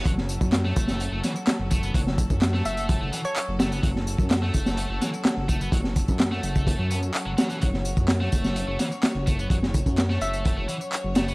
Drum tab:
HH |x-x-x-x-x-x-x-x-|x-x-x-xxx-x-x-xx|x-x-x-x-x-x-x-x-|x-x-x-x-x-x-x-xx|
TB |x-xxx-xxx-xxx-xx|x-xxx-xxx-xxx-xx|x-xxx-xxx-xxx-xx|x-xxx-xxx-xxx-xx|
CP |----x-------x---|----x-------x---|----x-------x---|----x-------x---|
SD |-o--oo-o--o-o---|-o--oo--------o-|-o--oo-o--o-o---|-o--oo--------o-|
BD |o--o--o-------o-|o-oo----o-------|o--o--o-------o-|o-oo---oo-------|

HH |x-x-x-x-x-x-x-x-|x-x-x-xxx-x-x-xx|
TB |x-xxx-xxx-xxx-xx|x-xxx-xxx-xxx-xx|
CP |----x-------x---|----x-------x---|
SD |-o--oo-o--o-o---|-o--oo--------o-|
BD |o--o--o-------o-|o-oo----o-------|